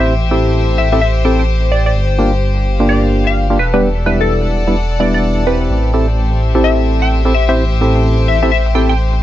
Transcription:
Already playing: A1 G4 C5 E5
0.00 C4 E4 G4 C5
0.22 closed hi-hat
0.31 C4 E4 G4 A4
0.46 closed hi-hat
0.69 closed hi-hat
0.78 E5
0.92 C4 E4 G4 A4 E5
1.01 E5
1.16 closed hi-hat
1.25 C4 E4 G4 A4 G5
1.39 G5, closed hi-hat
1.63 closed hi-hat
1.72 D5
1.86 D5, closed hi-hat
1.95 G1
2.10 closed hi-hat
2.19 A#3 D4 F4 G4
2.33 closed hi-hat
2.57 closed hi-hat
2.70 F5
2.80 A#3 D4 F4 G4, closed hi-hat
2.89 D5
3.03 closed hi-hat
3.27 F5, closed hi-hat
3.50 A#3 D4 F4 G4
3.59 E1 A4 B4
3.74 G3 B3 D4 G4 B4
3.94 D5, closed hi-hat
4.06 G3 B3 D4 E4 B4
4.21 A4, closed hi-hat
4.42 F#5, closed hi-hat
4.67 G3 B3 D4 E4, closed hi-hat
4.91 closed hi-hat
5.00 G3 B3 D4 E4 D5
5.14 D5, closed hi-hat
5.38 closed hi-hat
5.47 C4 E4 G4 B4
5.61 closed hi-hat
5.70 A1 G4
5.85 closed hi-hat
5.94 C4 E4 G4 A4 C5
6.08 closed hi-hat
6.29 E5, closed hi-hat
6.55 C4 E4 G4 A4, closed hi-hat
6.64 E5
6.78 closed hi-hat
7.02 G5, closed hi-hat
7.25 C4 E4 G4 A4, closed hi-hat
7.34 E5
7.49 C4 E4 G4 C5 E5, closed hi-hat
7.72 closed hi-hat
7.81 C4 E4 G4 A4
7.96 closed hi-hat
8.19 closed hi-hat
8.28 E5
8.43 C4 E4 G4 A4 E5, closed hi-hat
8.52 E5
8.66 closed hi-hat
8.75 C4 E4 G4 A4 G5
8.89 G5, closed hi-hat
9.13 closed hi-hat

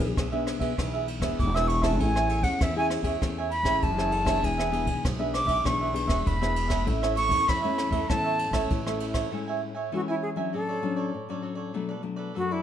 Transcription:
Already playing: B1 E3 C#5
0.00 B3 D4 G#4, muted cavaquinho stroke, kick, ride
0.16 B1 B2 D4 G#4 B4 E5, kick, cross-stick, ride
0.32 B3 D4 G#4 B4 E5
0.47 cross-stick, ride
0.59 B1 B3 D4 G#4 B4 E5, kick, ride
0.77 B1 E3 B3 D4 G#4 B4 E5, kick, cross-stick, ride
0.93 G#4 B4 E5
1.07 muted cavaquinho stroke, ride
1.20 E1 B3 D4 G#4 B4 E5, kick, cross-stick, ride
1.39 E1 B2 D6, kick, ride
1.54 B3 D4 G#4 B4 E5 E6, cross-stick
1.67 D4 G#4 B4 E5 C#6, ride
1.82 C#4 E4 G#4 B4 E5 A5, kick, cross-stick, ride
1.99 A1 A3 A4 C#5 E5 G#5, kick, ride
2.15 C#5 E5 G#5, cross-stick
2.29 A4 C#5 E5 G#5, ride
2.41 E2 C#4 E4 G#4 F#5, muted cavaquinho stroke, kick, ride
2.61 E2 E3 A4 C#5 E5 G#5, kick, cross-stick, ride
2.76 C#4 E4 G#4 C#5 E5 G#5
2.90 cross-stick, ride
3.02 E2 C#4 E4 G#4 C#5 E5 G#5, kick, ride
3.21 E2 A3 C#4 E4 G#4 A4 C#5 E5 G#5, kick, cross-stick, ride
3.38 C#5 E5 G#5
3.51 B5, muted cavaquinho stroke, ride
3.63 A1 C#4 E4 G#4 C#5 E5 G#5, kick, cross-stick, ride
3.81 F#1 E3 A5, kick, ride
3.97 C#4 E4 G#4 C#5 E5 G#5, cross-stick
4.12 A4 C#5 E5 G#5, ride
4.25 B3 D4 G#4 C#5 E5 G#5, kick, cross-stick, ride
4.41 E1 E3 D4 G#4 B4 E5 G#5, kick, ride
4.58 G#4 B4 E5, cross-stick
4.71 B3 D4 G#4 B4 E5, ride
4.85 B1, muted cavaquinho stroke, kick, ride
5.03 B1 B2 D4 G#4 B4 E5, kick, cross-stick, ride
5.19 B3 D4 G#4 B4 E5
5.34 D6, cross-stick, ride
5.46 B1 G#4 B4 E5, kick, ride
5.64 B1 E3 B3 D4 G#4 B4 E5 C#6, kick, cross-stick, ride
5.81 G#4 B4 E5
5.93 B3 D4 G#4, muted cavaquinho stroke, ride
6.07 E1 G#4 B4 E5, kick, cross-stick, ride
6.25 E1 B2 B5, kick, ride
6.41 B3 D4 G#4 B4 E5, cross-stick
6.55 D4 G#4 B4 E5, ride
6.68 G#4 B4 E5, kick, cross-stick, ride
6.85 A1 A2 A3 C#4 E4 A4 C#5 E5, kick, ride
7.02 A4 C#5 E5, cross-stick
7.15 E4 A4 C#5 E5 C#6, ride
7.29 E2 A3 C#4 E4, muted cavaquinho stroke, kick, ride
7.47 E2 E3 E4 A4 C#5 E5 B5, kick, cross-stick, ride
7.62 A3 C#4 E4 A4 C#5 E5
7.78 cross-stick, ride
7.90 E2 A3 C#4 E4 A4 C#5 E5, kick, ride
8.09 E2 A2 A3 C#4 E4 A4 C#5 E5 A5, kick, cross-stick, ride
8.24 A4 C#5 E5
8.39 muted cavaquinho stroke, ride
8.51 A1 A3 C#4 E4 A4 C#5 E5, kick, cross-stick, ride
8.70 A1 E3, kick, ride
8.86 A3 C#4 E4 A4 C#5 E5, cross-stick
9.00 E4 A4 C#5 E5, ride
9.14 A4 C#5 E5, kick, cross-stick, ride
9.31 A2 G#3 C#4 E4 A4 C#5 E5 G#5
9.48 C#5 E5 G#5
9.62 muted cavaquinho stroke
9.75 C#5 E5 G#5
9.92 E3 G#3 C#4 E4 F#4 A4 C#5 E5 G#5
10.08 E4 C#5 E5 G#5
10.22 G#4
10.36 F#3 C#4 D4 C#5 E5 G#5
10.53 A2 F#4 A4 C#5 D5
10.69 A4 C#5 D5
10.82 F#3 C#4 D4
10.96 A4 C#5 D5
11.14 A2
11.29 F#3 C#4 D4 A4 C#5 D5
11.42 F#4 A4 C#5 D5
11.55 A4 C#5 D5
11.73 B2 F#3 A3 D4 A4 B4 D5
11.89 A4 B4 D5
12.03 F#3 A3 D4, muted cavaquinho stroke
12.16 A4 B4 D5
12.34 F#2 F#3 A3 D4 F#4 A4 B4 D5
12.51 E4 A4 B4 D5

